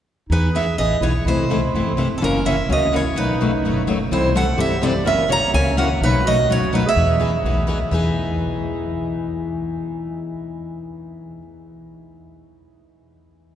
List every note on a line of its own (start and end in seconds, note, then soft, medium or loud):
0.29 0.68 E2 medium
0.29 0.48 E3 medium
0.29 0.48 B3 medium
0.29 0.52 D#4 medium
0.29 0.48 D#4 medium
0.29 0.49 G#4 medium
0.29 0.56 B4 medium
0.52 0.64 E3 medium
0.52 0.65 B3 medium
0.52 0.65 D#4 medium
0.52 0.75 G#4 medium
0.52 0.78 E5 medium
0.57 0.65 G#4 medium
0.78 0.98 A1 medium
0.78 0.96 E3 medium
0.78 0.96 B3 medium
0.78 0.96 D#4 medium
0.78 0.99 G#4 medium
0.78 0.96 G#4 medium
0.78 1.03 D#5 medium
1.00 1.22 B1 medium
1.00 1.12 E3 medium
1.00 1.12 B3 medium
1.00 1.12 D#4 medium
1.00 1.23 E4 medium
1.00 1.12 G#4 medium
1.00 1.25 C#5 medium
1.25 1.63 C2 medium
1.25 1.44 C3 medium
1.25 1.44 E3 medium
1.25 1.44 A3 medium
1.25 2.06 E4 medium
1.25 1.44 E4 medium
1.25 1.44 A4 medium
1.25 2.07 C5 medium
1.50 1.59 C3 medium
1.50 1.60 E3 medium
1.50 1.60 A3 medium
1.50 1.60 E4 medium
1.50 1.60 A4 medium
1.75 2.12 G1 medium
1.75 1.92 C3 medium
1.75 1.92 E3 medium
1.75 1.92 A3 medium
1.75 1.92 E4 medium
1.75 1.92 A4 medium
1.97 2.07 C3 medium
1.97 2.07 E3 medium
1.97 2.07 A3 medium
1.97 2.07 E4 medium
1.97 2.07 A4 medium
2.16 2.20 C4 medium
2.16 2.22 A4 medium
2.21 2.60 F#1 medium
2.21 2.39 C#3 medium
2.21 2.39 E3 medium
2.21 2.39 A#3 medium
2.21 2.43 C#4 medium
2.21 2.39 C#4 medium
2.21 2.39 F#4 medium
2.21 2.47 A#4 medium
2.45 2.55 C#3 medium
2.45 2.55 E3 medium
2.45 2.55 A#3 medium
2.45 2.55 C#4 medium
2.45 2.55 F#4 medium
2.45 2.68 A#4 medium
2.45 2.68 E5 medium
2.69 3.07 C#2 medium
2.69 2.86 C#3 soft
2.69 2.87 E3 medium
2.69 2.87 A#3 medium
2.69 2.87 C#4 medium
2.69 2.86 F#4 medium
2.69 2.92 F#4 medium
2.69 2.95 D#5 medium
2.92 3.02 C#3 medium
2.92 3.02 E3 medium
2.92 3.02 A#3 medium
2.92 3.02 C#4 medium
2.92 3.15 E4 medium
2.92 3.03 F#4 medium
2.96 3.19 C#5 medium
3.16 3.54 B1 medium
3.16 3.33 B2 medium
3.16 3.34 F#3 medium
3.16 3.34 A3 medium
3.16 3.34 D#4 medium
3.16 3.97 D#4 medium
3.16 3.34 F#4 medium
3.16 3.97 B4 medium
3.41 3.50 B2 medium
3.41 3.50 F#3 medium
3.41 3.50 A3 medium
3.41 3.51 D#4 medium
3.41 3.50 F#4 medium
3.63 4.01 F#1 medium
3.63 3.82 B2 medium
3.63 3.82 F#3 medium
3.63 3.82 A3 medium
3.63 3.82 D#4 medium
3.63 3.82 F#4 medium
3.87 3.97 B2 medium
3.87 3.97 F#3 medium
3.87 3.97 A3 medium
3.87 3.97 D#4 medium
3.87 3.98 F#4 medium
4.11 4.49 C2 medium
4.11 4.29 C3 medium
4.11 4.29 E3 medium
4.11 4.29 G3 medium
4.11 4.29 C4 medium
4.11 4.33 E4 medium
4.11 4.29 E4 medium
4.11 4.30 A4 medium
4.11 4.36 C5 medium
4.35 4.45 C3 medium
4.35 4.45 E3 medium
4.35 4.45 G3 medium
4.35 4.45 C4 medium
4.35 4.45 E4 medium
4.35 4.57 A4 medium
4.35 4.45 A4 medium
4.35 4.60 F#5 medium
4.57 4.96 G2 medium
4.57 4.76 C3 medium
4.57 4.76 E3 medium
4.57 4.76 G3 medium
4.57 4.76 C4 medium
4.57 4.76 E4 medium
4.57 4.80 G4 medium
4.57 4.76 A4 medium
4.57 4.84 E5 medium
4.81 4.92 C3 medium
4.81 4.92 E3 medium
4.81 4.92 G3 medium
4.81 4.92 C4 medium
4.81 4.92 E4 medium
4.81 5.04 G4 medium
4.81 4.92 A4 medium
4.81 5.07 D5 medium
5.05 5.43 F#1 medium
5.05 5.23 C#3 medium
5.05 5.24 E3 medium
5.05 5.23 A#3 medium
5.05 5.24 C#4 medium
5.05 5.24 F#4 medium
5.05 5.28 A#4 medium
5.05 5.31 E5 medium
5.28 5.39 C#3 medium
5.28 5.39 E3 medium
5.28 5.39 A#3 medium
5.28 5.39 C#4 medium
5.28 5.40 F#4 medium
5.28 5.52 C#5 medium
5.28 5.53 A#5 medium
5.53 5.92 C#2 medium
5.53 5.71 C#3 medium
5.53 5.71 E3 medium
5.53 5.71 A#3 medium
5.53 5.72 C#4 medium
5.53 5.71 F#4 medium
5.53 5.75 C#5 medium
5.53 5.78 G#5 medium
5.77 5.87 C#3 medium
5.77 5.87 E3 medium
5.77 5.87 A#3 medium
5.77 5.88 C#4 medium
5.77 5.88 F#4 medium
5.77 6.00 A#4 medium
5.77 6.00 F#5 medium
6.01 6.39 B1 medium
6.01 6.20 B2 medium
6.01 6.20 F#3 medium
6.01 6.24 D#4 medium
6.01 6.20 D#4 medium
6.01 6.21 F#4 medium
6.01 6.27 B4 medium
6.05 6.21 A3 medium
6.24 6.36 B2 medium
6.24 6.36 F#3 medium
6.24 6.36 A3 medium
6.24 6.36 D#4 medium
6.24 6.47 F#4 medium
6.24 6.36 F#4 medium
6.24 6.48 D#5 medium
6.48 6.87 F#1 medium
6.48 6.67 B2 medium
6.48 6.67 F#3 medium
6.48 6.67 A3 medium
6.48 6.67 D#4 medium
6.48 6.71 F#4 medium
6.48 6.67 F#4 medium
6.48 6.73 C#5 medium
6.73 6.83 B2 medium
6.73 6.82 F#3 medium
6.73 6.83 A3 medium
6.73 6.83 D#4 medium
6.73 6.85 D#4 medium
6.73 6.83 F#4 medium
6.73 6.87 B4 medium
6.86 7.65 G#4 medium
6.86 7.66 E5 medium
6.96 7.35 E2 medium
6.96 7.14 E3 medium
6.96 7.14 B3 medium
6.96 7.15 D#4 medium
6.96 7.14 G#4 medium
7.20 7.30 E3 medium
7.20 7.30 B3 medium
7.20 7.31 D#4 medium
7.20 7.30 G#4 medium
7.44 7.82 B1 medium
7.44 7.63 E3 medium
7.44 7.63 B3 medium
7.44 7.63 D#4 medium
7.44 7.63 G#4 medium
7.67 7.77 E3 medium
7.67 7.78 B3 medium
7.67 7.78 D#4 medium
7.67 7.78 G#4 medium
7.91 11.30 E2 medium
7.91 11.41 E3 medium
7.91 11.42 B3 medium
7.91 11.43 D#4 medium
7.91 11.44 G#4 medium